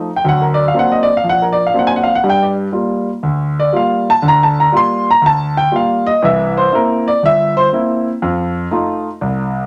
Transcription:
0.16 G5
0.25 D2 F#3
0.29 F#5
0.42 A#4
0.54 D5
0.68 F5
0.74 F#3 A#3 C4 D4
0.79 F#5
0.92 D#5
1.03 D5
1.17 F5
1.24 A#1
1.29 F#5
1.42 A#4
1.53 D5
1.67 F5
1.74 F#3 A#3 C4 D4
1.79 F#5
1.87 G#5
1.96 F#5
2.03 F5
2.15 F#5
2.24 G2 G3
2.29 G5
2.43 D5
2.72 G3 A#3 F4
3.23 D2
3.60 D5
3.73 G3 A#3 F4 F5
4.10 A5
4.22 D2 D3
4.28 A#5
4.43 A5
4.60 A#5
4.72 G3 A#3 F4
4.77 C6
5.11 A#5
5.22 D2
5.26 A5
5.57 G5
5.72 G3 A#3 F4
5.76 F5
6.07 D#5
6.22 C2 E3 E5
6.57 C5
6.72 A#3 C4 E4 A#4
7.08 D5
7.23 G1 E5
7.57 C5
7.72 A#3 C4 E4
8.22 F2
8.71 A3 D#4 F4
9.21 C2

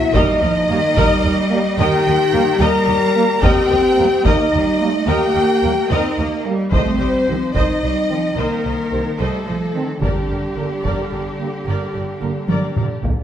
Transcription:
Already playing: F#3 E4 E5
0.13 D#2 G3 D#4 A#4 D#5, taiko
0.41 D#2 F3 A#4 D#5, taiko low
0.68 D#2 D#3 G3 A#3 G4 A#4
0.96 D#2 G3 A#4 D#5, taiko
1.23 D#2 A#4 D#5
1.51 G3 A#3
1.78 D#2 D#3 G4 A#4 D#5 G5
2.06 D#2 A#4 D#5
2.34 D#2 G3 A#3 G4 A#4
2.60 D#2 G3 A#4 D#5 A#5
2.88 D#2 A#4 D#5
3.16 G3 A#3
3.42 D#2 C4 G4 A#4 D#5 G5, taiko
3.70 D#2 A#4 D#5
3.97 D#2 G3 A#3 G4 A#4
4.25 D#2 A#3 D#4 A#4 D#5, taiko
4.53 D#2 G3 A#4 D#5
4.80 G3 A3 A#3
5.08 D#2 A#3 G4 A#4 D#5 G5
5.35 D#2 A#4 D#5
5.62 D#2 G3 A#3 G4 A#4
5.90 D#2 C4 D#4 A#4 D#5
6.18 D#2 A#3 A#4 D#5
6.45 G3 A#3
6.72 C2 A3 C4 C5 D#5, taiko
7.00 C2 G3 C5 D#5
7.27 C2 D#3 F3 C4 G4 C5
7.55 C2 D#3 D#4 C5 D#5, taiko
7.82 C2 G3 C5 D#5
8.09 D#3 F3 C4
8.37 C2 D#3 A#3 A#4 C5 D#5
8.64 C2 C5 D#5
8.91 C2 D#3 C4 G4 C5
9.19 C2 G3 A3 A4 C5 D#5
9.47 C2 F3 C5 D#5
9.74 D#3 C4
10.01 G1 D3 G3 G4 A#4 D5, taiko
10.29 G1 A#4 D5
10.57 G1 D3 A#3 G4 A#4
10.84 G1 A#4 D5, taiko
11.12 G1 A#4 D5
11.39 D3 A#3
11.66 G1 A#4 D5
11.94 G1 A#4 D5
12.21 G1 D3 A#3 G4 A#4
12.49 G1 A#4 D5, taiko high
12.76 G1 A#4 D5, taiko mid
13.03 D3 A#3, taiko low

